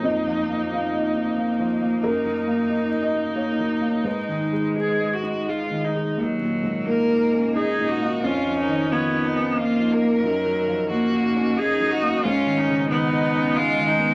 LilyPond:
<<
  \new Staff \with { instrumentName = "Viola" } { \time 3/4 \key ees \minor \tempo 4 = 90 ees'2. | ees'2.~ | ees'4 aes'8 ges'8 f'8 ees'8 | r4 bes'4 aes'8 ges'8 |
f'8 ees'8 des'8 ees'8 f'8 bes'8~ | bes'4 ges'4 aes'8 ges'8 | f'8 ees'8 ees'4 f'8 ees'8 | }
  \new Staff \with { instrumentName = "Ambient pad" } { \time 3/4 \key ees \minor << { <ees' ees''>2. | <ees' ees''>2.~ | <ees' ees''>2. | <ees' ees''>2.~ |
<ees' ees''>2.~ | <ees' ees''>2. | <ees' ees''>2. | } \\ { bes2.~ | bes2. | aes2. | bes'2.~ |
bes'2.~ | bes'2. | ces'2. | } >> }
  \new Staff \with { instrumentName = "Cello" } { \time 3/4 \key ees \minor bes2.~ | bes2. | aes2~ aes8 r8 | ges4 bes4 ees'4 |
des'4 ces'4 bes4 | ges4 bes4 ees'4 | des'4 ces'4 aes4 | }
  \new Staff \with { instrumentName = "Felt piano" } { \time 3/4 \key ees \minor ees''4 f''4. r8 | bes'4. ees''8 des''4 | ces''2 r4 | r2. |
r2. | r2. | r2. | }
  \new Staff \with { instrumentName = "Felt piano" } { \clef bass \time 3/4 \key ees \minor \tuplet 3/2 { f,8 f8 bes8 ees'8 ees''8 ees'8 bes8 f8 bes8 } | \tuplet 3/2 { ges,8 ges8 bes8 ees'8 ees''8 ees'8 bes8 ges8 bes8 } | \tuplet 3/2 { aes,8 ees8 aes8 ees'8 ees''8 ees'8 aes8 ees8 aes8 } | \tuplet 3/2 { ees,8 bes,8 aes,8 bes,8 ees'8 des'8 ees'8 bes,8 bes8 } |
\tuplet 3/2 { f,8 f8 ees8 f8 ees'8 des'8 ees'8 f8 bes8 } | \tuplet 3/2 { ges,8 ges8 f8 ges8 ees'8 des'8 ees'8 ges8 bes8 } | \tuplet 3/2 { aes,8 ees8 des8 ees8 ees'8 des'8 ees'8 ees8 ces'8 } | }
>>